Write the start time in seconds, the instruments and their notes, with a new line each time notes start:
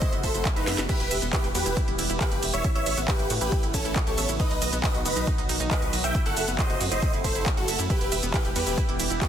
Already playing: analog synth pad C3 F#3 A3 F#4, supersaw synth C5 D#5
0.02 synth pluck E4, kick, closed hi-hat, shaker
0.13 analog synth bass F#1, synth pluck E4, closed hi-hat
0.23 analog synth bass F#1, supersaw synth A4 C5, synth pluck E5, kick, open hi-hat, shaker
0.34 analog synth bass F#1, synth pluck E4, closed hi-hat, shaker
0.45 synth pluck E4, kick, clap, closed hi-hat, shaker
0.56 analog synth bass F#1, supersaw synth D#4 B4, synth pluck E5, closed hi-hat
0.67 analog synth bass F#2, synth pluck E5, snare, open hi-hat, shaker
0.78 analog synth bass F#1, synth pluck B4, snare, closed hi-hat, shaker
0.89 analog synth pad E3 G3 B3 G4, synth pluck E4, supersaw synth G4 B4, kick, closed hi-hat, crash, ride, shaker
1.00 analog synth bass E1, synth pluck E4, closed hi-hat
1.11 analog synth bass E1, synth pluck E5, open hi-hat, ride, shaker
1.22 analog synth bass E1, synth pluck B3, closed hi-hat, shaker
1.33 synth pluck E4, supersaw synth G4 B4, kick, clap, closed hi-hat, ride, shaker
1.44 analog synth bass E1, synth pluck G4, closed hi-hat
1.55 analog synth bass E2, synth pluck F#4, supersaw synth G4 B4, open hi-hat, ride, shaker
1.66 analog synth bass E1, synth pluck E4, closed hi-hat, shaker
1.77 synth pluck E4, kick, closed hi-hat, ride, shaker
1.88 analog synth bass E1, synth pluck E4, closed hi-hat
1.99 analog synth bass E1, synth pluck E4, open hi-hat, ride, shaker
2.10 analog synth bass E1, synth pluck E4, closed hi-hat, shaker
2.21 synth pluck E4, supersaw synth G4 B4, kick, clap, closed hi-hat, ride, shaker
2.32 analog synth bass F#1, synth pluck G4, closed hi-hat
2.43 analog synth bass E1, synth pluck E5, open hi-hat, ride, shaker
2.53 analog synth bass E1, synth pluck E4, supersaw synth C#5 E5, closed hi-hat, shaker
2.64 analog synth pad C#3 A3 B3 E4, synth pluck E4, kick, closed hi-hat, ride, shaker
2.75 analog synth bass A1, synth pluck E4, supersaw synth C#5 E5, closed hi-hat
2.86 analog synth bass A1, synth pluck E5, open hi-hat, ride, shaker
2.97 analog synth bass A1, synth pluck B3, closed hi-hat, shaker
3.08 synth pluck E4, supersaw synth G4 B4, kick, clap, closed hi-hat, ride, shaker
3.19 analog synth bass A1, synth pluck G4, closed hi-hat
3.30 analog synth bass A2, synth pluck F#4, open hi-hat, ride, shaker
3.41 analog synth bass A1, synth pluck E4, supersaw synth G4 B4, closed hi-hat, shaker
3.52 synth pluck E4, kick, closed hi-hat, ride, shaker
3.63 analog synth bass A1, synth pluck E4, closed hi-hat
3.74 analog synth bass A1, supersaw synth C#4 A4, synth pluck E4, kick, open hi-hat, ride, shaker
3.85 analog synth bass A1, synth pluck E4, closed hi-hat, shaker
3.96 synth pluck E4, kick, clap, closed hi-hat, ride, shaker
4.07 analog synth bass B1, synth pluck G4, supersaw synth A4 C#5, closed hi-hat
4.18 analog synth bass A1, synth pluck E5, open hi-hat, ride, shaker
4.29 analog synth bass A1, synth pluck E4, closed hi-hat, shaker
4.40 analog synth pad D#3 F#3 F#4, synth pluck D#4, supersaw synth B4 D#5, kick, closed hi-hat, ride, shaker
4.51 analog synth bass B1, synth pluck D#4, closed hi-hat
4.62 analog synth bass B1, synth pluck D#5, open hi-hat, ride, shaker
4.73 analog synth bass B1, synth pluck B3, closed hi-hat, shaker
4.84 synth pluck D#4, supersaw synth B4 D#5, kick, clap, closed hi-hat, ride, shaker
4.95 analog synth bass B1, synth pluck F#4, closed hi-hat
5.05 analog synth bass F#1, synth pluck F#4, supersaw synth B4 D#5, open hi-hat, ride, shaker
5.16 analog synth bass B1, synth pluck D#4, closed hi-hat, shaker
5.27 synth pluck D#4, kick, closed hi-hat, ride, shaker
5.38 analog synth bass B1, synth pluck D#4, closed hi-hat
5.49 analog synth bass B1, synth pluck D#4, open hi-hat, ride, shaker
5.60 analog synth bass B1, synth pluck D#4, closed hi-hat, shaker
5.71 supersaw synth B4 D#5, kick, clap, closed hi-hat, ride, shaker
5.82 analog synth bass C2, synth pluck F#4, closed hi-hat
5.93 analog synth bass B1, synth pluck D#5, open hi-hat, ride, shaker
6.04 analog synth bass B1, synth pluck D#4, supersaw synth E5 G5, closed hi-hat, shaker
6.15 analog synth pad C3 A3, synth pluck E4, kick, closed hi-hat, ride, shaker
6.26 analog synth bass F#1, synth pluck E4, supersaw synth A4 F#5, closed hi-hat
6.37 analog synth bass F#1, synth pluck E5, open hi-hat, ride, shaker
6.48 analog synth bass F#1, synth pluck B3, closed hi-hat, shaker
6.59 synth pluck E4, supersaw synth C5 D#5, kick, clap, closed hi-hat, ride, shaker
6.70 analog synth bass F#1, synth pluck F#4, closed hi-hat
6.80 analog synth bass F#2, synth pluck F#4, open hi-hat, ride, shaker
6.91 analog synth bass F#1, synth pluck E4, supersaw synth C5 D#5, closed hi-hat, shaker
7.02 synth pluck E4, kick, closed hi-hat, ride, shaker
7.13 analog synth bass F#1, synth pluck E4, closed hi-hat
7.24 analog synth bass F#1, synth pluck E4, supersaw synth A4 C5, kick, open hi-hat, ride, shaker
7.35 analog synth bass F#1, synth pluck E4, closed hi-hat, shaker
7.46 synth pluck E4, kick, clap, closed hi-hat, ride, shaker
7.57 analog synth bass F#1, synth pluck F#4, supersaw synth F#4 A4, closed hi-hat
7.68 analog synth bass F#1, synth pluck E5, open hi-hat, ride, shaker
7.79 analog synth bass F#2, synth pluck E4, closed hi-hat, shaker
7.90 analog synth pad E3 G3 B3 G4, synth pluck E4, supersaw synth G4 B4, kick, closed hi-hat, ride, shaker
8.01 analog synth bass E1, synth pluck E4, closed hi-hat
8.12 analog synth bass E1, synth pluck E5, open hi-hat, ride, shaker
8.23 analog synth bass E1, synth pluck B3, closed hi-hat, shaker
8.34 synth pluck E4, supersaw synth G4 B4, kick, clap, closed hi-hat, ride, shaker
8.45 analog synth bass E1, synth pluck G4, closed hi-hat
8.56 analog synth bass E2, synth pluck F#4, supersaw synth G4 B4, open hi-hat, ride, shaker
8.67 analog synth bass E1, synth pluck E4, closed hi-hat, shaker
8.78 synth pluck E4, kick, closed hi-hat, ride, shaker
8.89 analog synth bass E1, synth pluck E4, closed hi-hat
8.99 analog synth bass E1, synth pluck E4, open hi-hat, ride, shaker
9.10 analog synth bass E1, synth pluck E4, closed hi-hat, shaker
9.21 synth pluck E4, supersaw synth G4 B4, kick, clap, closed hi-hat, ride, shaker